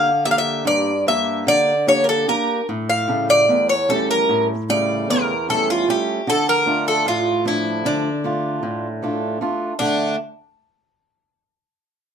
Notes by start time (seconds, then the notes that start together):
Already playing: D3 F5
0.25 A#3 D4 G4 E5
0.31 F5
0.38 E5
0.65 G2 D5
1.07 A#3 D4 G4 E5
1.47 D3 D5
1.87 A#3 D4 G4 C#5
2.04 A#4
2.09 A4
2.28 A#3 D4 G4 A#4
2.69 A2
2.90 F5
3.08 C#3 G3 A3
3.30 D5
3.49 E2
3.69 C#5
3.89 G3 A3 C#4 A4
4.11 A#4
4.29 A2
4.69 C#3 G3 A3 D5
5.10 E2 A#4
5.49 G3 A3 C#4 A4
5.70 F4
5.88 G3 A3 C#4 G4
6.27 D3 A4
6.49 A#4
6.66 A3 D4 F4
6.88 A4
7.06 A2 F4
7.45 F3 A3 D4 E4
7.85 D3 D4
8.24 A3 D4 F4
8.63 A2
9.03 A3 D4 F4
9.41 A3 D4 F4
9.79 D3 A3 D4